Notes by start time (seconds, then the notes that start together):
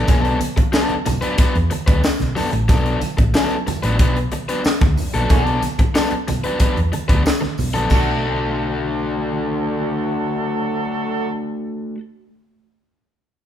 0.08 B1 F3 A#3 C#4 G#4, kick, closed hi-hat, tambourine, muted conga, low conga
0.20 F#3 B3 D4 A4
0.25 closed hi-hat
0.41 closed hi-hat, tambourine, high conga
0.57 muted overdriven electric guitar stroke, muted fingered electric bass stroke, kick, closed hi-hat, high conga
0.73 F#3 B3 D4 A4, snare, tambourine, muted conga
0.89 muted fingered electric bass stroke, closed hi-hat, muted conga
1.06 B1, muted overdriven electric guitar stroke, closed hi-hat, tambourine, high conga, low conga
1.21 F#3 B3 D4 B4, closed hi-hat
1.37 F#3 B3 D4 B4, kick, closed hi-hat, tambourine
1.55 E2, closed hi-hat, muted conga
1.70 muted overdriven electric guitar stroke, closed hi-hat, high conga
1.87 D2 F#3 B3 D4 B4, kick, closed hi-hat
2.03 muted overdriven electric guitar stroke, snare, tambourine
2.20 B1, snare, closed hi-hat, high conga
2.36 F#3 B3 D4 A4, open hi-hat, tambourine, low conga
2.52 A1, muted overdriven electric guitar stroke, closed hi-hat, high conga
2.68 B1 F#3 B3 D4 A4, kick, closed hi-hat, tambourine, low conga
2.86 closed hi-hat, muted conga
3.01 closed hi-hat, tambourine, high conga
3.17 A1, muted overdriven electric guitar stroke, kick, closed hi-hat, high conga
3.34 F#3 B3 D4 A4, snare, tambourine, muted conga
3.50 closed hi-hat
3.67 muted overdriven electric guitar stroke, muted fingered electric bass stroke, closed hi-hat, tambourine, high conga, low conga
3.83 A1 F#3 B3 D4 B4, closed hi-hat
3.99 B1 F#3 B3 D4 B4, kick, closed hi-hat
4.16 closed hi-hat, muted conga
4.32 muted overdriven electric guitar stroke, closed hi-hat, high conga
4.49 F#3 B3 D4 B4, closed hi-hat
4.64 muted fingered electric bass stroke, muted overdriven electric guitar stroke, snare, tambourine
4.81 D2, muted overdriven electric guitar stroke, kick, snare, closed hi-hat, muted conga, high conga
4.97 open hi-hat, tambourine, low conga
5.13 A#1 F#3 B3 D4 A4, closed hi-hat, high conga
5.29 B1 F3 F#3 A3 A#3 C#4 D4 G#4 A4, kick, closed hi-hat, tambourine, low conga
5.43 F#3 B3 D4 A4, muted conga
5.47 closed hi-hat
5.62 closed hi-hat, tambourine, high conga
5.78 muted overdriven electric guitar stroke, muted fingered electric bass stroke, kick, closed hi-hat, high conga
5.95 F#3 B3 D4 A4, snare, tambourine
6.11 muted fingered electric bass stroke, closed hi-hat, muted conga
6.28 B1, muted overdriven electric guitar stroke, closed hi-hat, tambourine, high conga, low conga
6.44 F#3 B3 D4 B4, closed hi-hat
6.60 F#3 B3 D4 B4, kick, closed hi-hat
6.77 E2, closed hi-hat, muted conga
6.92 muted overdriven electric guitar stroke, closed hi-hat, high conga
7.08 D2 F#3 B3 D4 B4, kick, closed hi-hat
7.25 muted overdriven electric guitar stroke, snare, tambourine, muted conga
7.41 muted overdriven electric guitar stroke, snare, muted conga, high conga
7.58 B1, open hi-hat, tambourine, low conga
7.74 A#1 F#3 B3 D4 A4, closed hi-hat, high conga
7.89 B1 F#3 A3 D4 F#4 A4, kick, crash, tambourine, high conga
7.94 A4